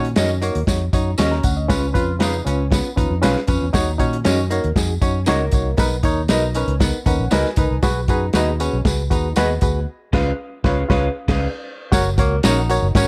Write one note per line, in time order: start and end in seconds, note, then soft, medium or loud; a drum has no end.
0.00 0.13 A#2 medium
0.00 0.38 D#3 medium
0.00 0.10 C#4 medium
0.05 closed hi-hat soft
0.16 0.50 F#2 medium
0.16 0.29 C#4 medium
0.16 0.36 C#4 medium
0.16 0.33 D#4 medium
0.16 0.29 F#4 medium
0.16 0.34 F#4 medium
0.16 0.30 A#4 medium
0.16 0.34 C#5 medium
0.16 0.30 D#5 medium
0.16 snare loud
0.16 closed hi-hat medium
0.16 tambourine medium
0.41 0.61 A#3 medium
0.41 0.59 D#4 medium
0.41 0.59 F#4 medium
0.41 0.59 C#5 medium
0.41 closed hi-hat medium
0.41 tambourine soft
0.55 0.66 D#2 medium
0.55 closed hi-hat soft
0.67 0.90 F2 medium
0.67 0.84 D#4 medium
0.67 0.85 F#4 medium
0.67 0.85 C#5 medium
0.67 kick medium
0.67 snare loud
0.67 closed hi-hat medium
0.67 tambourine medium
0.93 1.16 F#2 medium
0.93 1.10 D#4 medium
0.93 1.13 D#4 medium
0.93 1.10 F#4 medium
0.93 1.10 C#5 medium
0.93 kick medium
0.93 closed hi-hat medium
0.93 tambourine medium
1.18 1.41 D#2 medium
1.18 1.31 C#4 medium
1.18 1.67 C#4 medium
1.18 1.31 F#4 medium
1.18 1.32 A#4 medium
1.18 1.32 D#5 medium
1.18 snare loud
1.18 closed hi-hat medium
1.18 tambourine medium
1.31 1.44 A#5 medium
1.31 snare soft
1.43 1.67 D2 medium
1.43 1.56 F#5 medium
1.43 kick medium
1.43 closed hi-hat medium
1.43 tambourine medium
1.57 1.81 D#5 medium
1.68 2.42 C#3 medium
1.68 1.86 C#4 loud
1.68 1.89 C#4 medium
1.68 1.86 F4 medium
1.68 1.87 B4 loud
1.68 kick loud
1.68 snare loud
1.68 closed hi-hat medium
1.68 tambourine loud
1.93 2.40 F2 medium
1.93 2.11 C#4 medium
1.93 2.11 F4 medium
1.93 2.15 F4 medium
1.93 2.12 B4 loud
1.93 kick medium
1.93 closed hi-hat medium
1.93 tambourine soft
2.19 2.37 C#4 medium
2.19 2.33 C#4 medium
2.19 2.40 D#4 medium
2.19 2.37 F4 medium
2.19 2.34 G#4 medium
2.19 2.37 B4 medium
2.19 2.34 B4 medium
2.19 2.34 F5 medium
2.19 snare loud
2.19 closed hi-hat medium
2.19 tambourine medium
2.45 2.80 C#2 medium
2.45 2.62 C#4 medium
2.45 2.66 C#4 medium
2.45 2.63 F4 medium
2.45 2.63 B4 medium
2.45 closed hi-hat medium
2.45 tambourine soft
2.70 2.91 B3 medium
2.70 2.88 C#4 medium
2.70 2.89 F4 medium
2.70 2.89 B4 medium
2.70 kick medium
2.70 snare loud
2.70 closed hi-hat medium
2.70 tambourine medium
2.96 3.09 D#2 medium
2.96 3.14 C#4 medium
2.96 3.17 D#4 medium
2.96 3.14 F4 medium
2.96 3.14 B4 medium
2.96 kick medium
2.96 closed hi-hat medium
2.96 tambourine medium
3.10 3.22 F2 medium
3.22 3.34 B1 medium
3.22 3.39 C#4 loud
3.22 3.35 C#4 medium
3.22 3.39 F4 medium
3.22 3.36 G#4 medium
3.22 3.40 B4 loud
3.22 3.36 B4 medium
3.22 3.36 F5 medium
3.22 snare loud
3.22 closed hi-hat medium
3.22 tambourine medium
3.36 snare soft
3.47 3.60 F2 medium
3.47 3.65 C#4 medium
3.47 3.68 C#4 medium
3.47 3.65 F4 medium
3.47 3.66 B4 medium
3.47 kick loud
3.47 closed hi-hat medium
3.47 tambourine medium
3.62 3.73 E2 medium
3.73 3.96 D#2 medium
3.73 4.47 D#3 medium
3.73 3.90 D#4 loud
3.73 3.93 D#4 medium
3.73 3.91 F#4 loud
3.73 3.91 C#5 loud
3.73 kick loud
3.73 snare loud
3.73 closed hi-hat medium
3.73 tambourine medium
3.98 4.22 A#2 medium
3.98 4.19 C#4 medium
3.98 4.16 D#4 medium
3.98 4.16 F#4 medium
3.98 4.17 C#5 loud
3.98 kick medium
3.98 closed hi-hat medium
3.98 tambourine soft
4.13 closed hi-hat soft
4.25 4.59 F#2 medium
4.25 4.38 C#4 medium
4.25 4.44 C#4 medium
4.25 4.42 D#4 medium
4.25 4.42 F#4 medium
4.25 4.38 F#4 medium
4.25 4.38 A#4 medium
4.25 4.42 C#5 medium
4.25 4.38 D#5 medium
4.25 snare loud
4.25 closed hi-hat medium
4.25 tambourine medium
4.50 4.70 A#3 medium
4.50 4.67 D#4 medium
4.50 4.68 F#4 medium
4.50 4.68 C#5 medium
4.50 closed hi-hat medium
4.50 tambourine soft
4.64 4.75 D#2 medium
4.64 closed hi-hat soft
4.76 4.99 F2 medium
4.76 4.93 D#4 medium
4.76 4.93 F#4 medium
4.76 4.94 G#4 medium
4.76 kick medium
4.76 snare loud
4.76 closed hi-hat medium
4.76 tambourine medium
5.01 5.24 F#2 medium
5.01 5.21 C#4 medium
5.01 5.18 D#4 medium
5.01 5.19 F#4 medium
5.01 5.19 C#5 medium
5.01 kick medium
5.01 closed hi-hat medium
5.01 tambourine medium
5.26 5.50 C#2 medium
5.26 5.75 A#3 medium
5.26 5.40 C#4 medium
5.26 5.44 D#4 loud
5.26 5.40 F#4 medium
5.26 5.45 F#4 medium
5.26 5.40 A#4 medium
5.26 5.45 C#5 loud
5.26 5.41 D#5 medium
5.26 snare loud
5.26 closed hi-hat loud
5.26 tambourine medium
5.51 5.75 C2 medium
5.51 5.70 D#4 medium
5.51 5.70 F#4 medium
5.51 5.70 C#5 medium
5.51 kick medium
5.51 closed hi-hat medium
5.51 tambourine medium
5.77 6.01 B1 medium
5.77 6.51 B2 medium
5.77 5.97 B3 medium
5.77 5.95 D#4 loud
5.77 5.95 A#4 medium
5.77 5.96 B4 loud
5.77 kick loud
5.77 snare loud
5.77 closed hi-hat medium
5.77 tambourine medium
6.03 6.26 D#2 medium
6.03 6.23 D#4 medium
6.03 6.21 D#4 loud
6.03 6.21 A#4 medium
6.03 6.21 C#5 loud
6.03 kick medium
6.03 closed hi-hat medium
6.03 tambourine soft
6.28 6.63 B1 medium
6.28 6.42 B3 medium
6.28 6.49 D#4 medium
6.28 6.46 D#4 medium
6.28 6.42 F#4 medium
6.28 6.47 A#4 medium
6.28 6.43 A#4 medium
6.28 6.47 B4 medium
6.28 6.43 D#5 loud
6.28 snare loud
6.28 closed hi-hat medium
6.28 tambourine medium
6.54 6.75 C#4 medium
6.54 6.72 D#4 medium
6.54 6.72 A#4 medium
6.54 6.73 B4 medium
6.54 closed hi-hat medium
6.54 tambourine medium
6.68 6.90 C#2 medium
6.68 closed hi-hat soft
6.80 7.00 B3 medium
6.80 6.97 D#4 medium
6.80 6.98 A#4 medium
6.80 6.98 B4 medium
6.80 kick medium
6.80 snare loud
6.80 closed hi-hat medium
6.80 tambourine medium
7.06 7.17 D#2 medium
7.06 7.25 C#4 medium
7.06 7.23 D#4 medium
7.06 7.23 A#4 medium
7.06 7.24 B4 medium
7.06 7.30 F#5 medium
7.06 kick medium
7.06 closed hi-hat medium
7.06 tambourine medium
7.19 7.30 A#1 medium
7.31 7.43 C#2 medium
7.31 7.44 B3 medium
7.31 7.49 D#4 loud
7.31 7.44 F#4 medium
7.31 7.45 A#4 medium
7.31 7.49 A#4 loud
7.31 7.49 B4 loud
7.31 7.45 D#5 medium
7.31 7.80 G#5 medium
7.31 snare loud
7.31 closed hi-hat medium
7.31 tambourine medium
7.45 snare soft
7.56 7.69 C#2 medium
7.56 7.77 D#4 medium
7.56 7.74 D#4 medium
7.56 7.75 A#4 medium
7.56 7.75 B4 medium
7.56 kick loud
7.56 closed hi-hat medium
7.56 tambourine medium
7.71 7.82 C2 medium
7.83 8.05 B1 medium
7.83 8.56 B2 medium
7.83 8.00 F#4 loud
7.83 8.02 F#4 medium
7.83 8.00 G#4 medium
7.83 8.00 B4 loud
7.83 kick loud
7.83 snare loud
7.83 closed hi-hat medium
7.83 tambourine medium
8.08 8.31 F#2 medium
8.08 8.28 D#4 medium
8.08 8.26 F#4 medium
8.08 8.26 G#4 medium
8.08 8.26 B4 loud
8.08 kick medium
8.08 closed hi-hat medium
8.08 tambourine soft
8.33 8.68 D#2 medium
8.33 8.47 B3 medium
8.33 8.54 D#4 medium
8.33 8.51 F#4 medium
8.33 8.47 F#4 medium
8.33 8.52 G#4 medium
8.33 8.47 G#4 medium
8.33 8.52 B4 medium
8.33 8.48 D#5 medium
8.33 snare loud
8.33 closed hi-hat medium
8.33 tambourine medium
8.60 8.80 C#4 medium
8.60 8.77 F#4 medium
8.60 8.77 G#4 medium
8.60 8.77 B4 medium
8.60 closed hi-hat medium
8.60 tambourine medium
8.73 8.84 B1 medium
8.85 9.08 C#2 medium
8.85 9.02 F#4 medium
8.85 9.03 G#4 medium
8.85 9.03 B4 medium
8.85 kick medium
8.85 snare loud
8.85 closed hi-hat medium
8.85 tambourine medium
9.10 9.33 D#2 medium
9.10 9.31 D#4 medium
9.10 9.28 F#4 medium
9.10 9.28 G#4 medium
9.10 9.28 B4 medium
9.10 kick medium
9.10 closed hi-hat medium
9.10 tambourine medium
9.36 9.59 D#2 medium
9.36 9.49 B3 medium
9.36 9.85 B3 medium
9.36 9.53 F#4 loud
9.36 9.49 F#4 medium
9.36 9.54 G#4 loud
9.36 9.50 G#4 medium
9.36 9.54 B4 loud
9.36 9.50 D#5 medium
9.36 snare loud
9.36 closed hi-hat medium
9.36 tambourine medium
9.61 9.85 D2 medium
9.61 9.79 F#4 medium
9.61 9.79 G#4 medium
9.61 9.79 B4 medium
9.61 kick medium
9.61 closed hi-hat medium
9.61 tambourine medium
10.13 10.31 C#2 medium
10.13 10.30 C#4 medium
10.13 10.31 F4 medium
10.13 10.31 G#4 medium
10.13 10.31 B4 medium
10.13 10.31 F5 medium
10.13 kick loud
10.13 snare loud
10.13 crash medium
10.64 10.82 C#2 medium
10.64 10.82 C#4 loud
10.64 10.82 F4 medium
10.64 10.82 G#4 loud
10.64 10.82 B4 loud
10.64 10.83 B4 medium
10.64 10.83 C#5 medium
10.64 10.83 F5 medium
10.64 kick loud
10.64 snare loud
10.89 11.07 C#2 medium
10.89 11.07 C#4 medium
10.89 11.07 F4 medium
10.89 11.08 G#4 medium
10.89 11.07 B4 medium
10.89 11.08 B4 medium
10.89 11.07 C#5 medium
10.89 11.08 F5 medium
10.89 kick loud
10.89 snare medium
11.28 11.46 C#2 medium
11.28 11.46 C#4 medium
11.28 11.46 G#4 medium
11.28 11.46 B4 medium
11.28 11.47 F5 medium
11.28 kick loud
11.28 snare loud
11.28 crash medium
11.92 12.15 F#1 loud
11.92 12.09 F#4 loud
11.92 12.09 A#4 loud
11.92 12.10 C#5 loud
11.92 kick loud
11.92 snare loud
11.92 closed hi-hat loud
11.92 tambourine loud
12.18 12.40 C#2 medium
12.18 12.38 A#3 medium
12.18 12.35 F#4 medium
12.18 12.35 A#4 medium
12.18 12.36 C#5 medium
12.18 kick loud
12.18 closed hi-hat medium
12.18 tambourine soft
12.43 12.78 A#1 medium
12.43 12.56 C#4 medium
12.43 12.92 D#4 medium
12.43 12.61 F#4 medium
12.43 12.57 F#4 medium
12.43 12.61 A#4 medium
12.43 12.57 A#4 medium
12.43 12.61 C#5 loud
12.43 12.57 F#5 medium
12.43 snare loud
12.43 closed hi-hat medium
12.43 tambourine loud
12.70 12.86 F#4 medium
12.70 12.87 A#4 medium
12.70 12.87 C#5 loud
12.70 closed hi-hat medium
12.70 tambourine medium
12.82 12.93 F#1 medium
12.95 13.08 G#1 medium
12.95 13.08 C#4 medium
12.95 13.08 F#4 medium
12.95 13.08 A#4 medium
12.95 13.08 C#5 loud
12.95 kick loud
12.95 snare loud
12.95 closed hi-hat medium
12.95 tambourine loud